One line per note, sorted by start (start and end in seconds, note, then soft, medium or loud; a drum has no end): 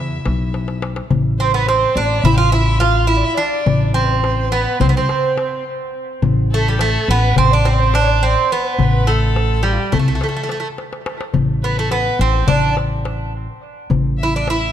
0.00 0.18 E2 medium
0.00 0.79 E4 medium
0.00 0.79 E5 medium
0.26 0.99 B1 medium
0.26 darbuka tek medium
0.54 darbuka tek medium
0.68 darbuka ka medium
0.82 darbuka tek medium
0.96 darbuka ka medium
1.10 1.84 A1 medium
1.10 darbuka dum medium
1.39 1.54 C4 medium
1.39 1.52 C5 medium
1.39 darbuka ka soft
1.53 1.68 B3 medium
1.53 1.68 B4 medium
1.66 1.98 C4 medium
1.66 1.96 C5 medium
1.66 darbuka tek medium
1.95 2.20 A1 medium
1.95 2.23 D4 medium
1.95 2.23 D5 medium
2.21 3.22 A1 medium
2.21 2.37 E4 medium
2.21 2.34 E5 medium
2.21 darbuka dum medium
2.32 2.52 F5 medium
2.32 2.36 G5 medium
2.38 2.52 F4 medium
2.50 2.80 E4 medium
2.50 2.80 E5 medium
2.50 darbuka tek medium
2.79 3.07 F4 medium
2.79 3.11 F5 medium
2.79 darbuka tek medium
3.07 3.38 E4 medium
3.07 3.18 E5 medium
3.17 3.26 D5 medium
3.24 3.36 E5 medium
3.37 3.94 D4 medium
3.37 3.90 D5 medium
3.66 4.64 A1 medium
3.66 darbuka dum medium
3.94 4.48 C4 medium
3.94 4.04 C5 medium
3.94 darbuka ka soft
4.02 4.11 B4 medium
4.10 4.54 C5 medium
4.24 darbuka tek medium
4.52 4.80 B3 medium
4.52 4.83 B4 medium
4.80 5.05 C2 loud
4.80 4.87 C4 medium
4.80 4.95 C5 medium
4.80 darbuka dum medium
4.89 4.95 B3 medium
4.96 5.63 C4 medium
4.96 5.62 C5 medium
5.09 darbuka tek medium
5.38 darbuka tek medium
6.22 6.96 A1 medium
6.22 darbuka dum medium
6.51 6.67 A3 medium
6.51 6.78 A4 medium
6.51 darbuka ka soft
6.68 6.82 G3 medium
6.79 7.09 A3 medium
6.79 7.09 A4 medium
6.79 darbuka tek medium
7.08 7.33 A1 medium
7.08 7.37 B3 medium
7.08 7.37 B4 medium
7.36 8.34 A1 medium
7.36 7.52 C4 medium
7.36 7.53 C5 medium
7.36 darbuka dum medium
7.51 7.67 D4 medium
7.51 7.67 D5 medium
7.65 7.94 C4 medium
7.65 7.74 C5 medium
7.65 darbuka tek medium
7.73 7.81 D5 medium
7.79 7.95 C5 medium
7.94 8.23 D4 medium
7.94 8.52 D5 medium
7.94 darbuka tek medium
8.23 8.49 C4 medium
8.51 9.10 B3 medium
8.51 8.62 B4 medium
8.60 8.68 C5 medium
8.67 8.75 B4 medium
8.73 8.84 C5 medium
8.78 9.76 A1 medium
8.78 darbuka dum medium
8.83 9.09 B4 medium
8.94 darbuka ka soft
9.07 9.62 A3 medium
9.07 9.66 A4 medium
9.07 darbuka ka soft
9.36 darbuka tek medium
9.63 9.93 G3 medium
9.63 9.74 G4 medium
9.72 9.81 F4 medium
9.79 9.92 G4 medium
9.92 10.17 C2 medium
9.92 9.98 A3 medium
9.92 10.74 A4 medium
9.92 darbuka dum medium
9.99 10.07 A3 soft
10.08 10.14 A3 medium
10.15 10.22 A3 soft
10.21 10.27 A3 soft
10.21 darbuka tek medium
10.29 10.35 A3 soft
10.36 10.42 A3 soft
10.43 10.50 A3 soft
10.49 10.59 A3 soft
10.49 darbuka tek medium
10.60 10.67 A3 soft
10.78 darbuka tek medium
10.93 darbuka ka medium
11.06 darbuka tek medium
11.21 darbuka ka medium
11.34 12.08 A1 medium
11.34 darbuka dum medium
11.63 11.78 B3 medium
11.63 11.79 B4 medium
11.63 darbuka ka soft
11.77 11.91 A3 medium
11.77 11.92 A4 medium
11.91 12.21 B3 medium
11.91 12.21 B4 medium
11.91 darbuka tek medium
12.19 12.44 A1 medium
12.19 12.47 C4 medium
12.19 12.48 C5 medium
12.47 13.45 A1 medium
12.47 12.75 D4 medium
12.47 12.75 D5 medium
12.47 darbuka dum medium
12.77 darbuka tek medium
13.05 darbuka tek medium
13.90 14.72 A1 medium
13.90 darbuka dum medium
14.19 14.45 E5 medium
14.19 darbuka ka soft
14.23 14.36 E4 medium
14.36 14.49 D4 medium
14.47 14.72 E4 medium
14.47 14.72 E5 medium
14.47 darbuka tek medium